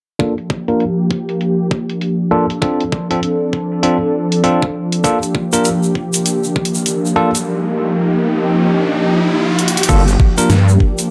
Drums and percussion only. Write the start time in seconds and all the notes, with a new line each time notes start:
0.19 kick, closed hi-hat
0.38 closed hi-hat
0.50 kick
0.68 closed hi-hat
0.80 closed hi-hat
1.11 kick
1.29 closed hi-hat
1.41 closed hi-hat
1.71 kick
1.90 closed hi-hat
2.01 closed hi-hat
2.50 closed hi-hat
2.62 kick, closed hi-hat
2.80 closed hi-hat
2.92 kick
3.11 closed hi-hat
3.23 closed hi-hat
3.53 kick
3.83 closed hi-hat
4.32 closed hi-hat
4.44 closed hi-hat
4.62 kick
4.92 closed hi-hat
5.04 kick, closed hi-hat, shaker
5.23 closed hi-hat, shaker
5.35 kick
5.53 closed hi-hat, shaker
5.65 closed hi-hat, shaker
5.83 shaker
5.95 kick
6.13 closed hi-hat, shaker
6.26 closed hi-hat, shaker
6.44 shaker
6.56 kick
6.65 closed hi-hat
6.74 shaker
6.86 closed hi-hat, shaker
7.06 shaker
7.35 closed hi-hat, shaker
9.59 closed hi-hat
9.68 closed hi-hat
9.77 closed hi-hat
9.83 closed hi-hat
9.89 kick, closed hi-hat, crash, shaker
10.08 closed hi-hat, shaker
10.20 kick
10.38 closed hi-hat, shaker
10.50 snare, closed hi-hat, shaker
10.69 shaker
10.80 kick
10.98 closed hi-hat, shaker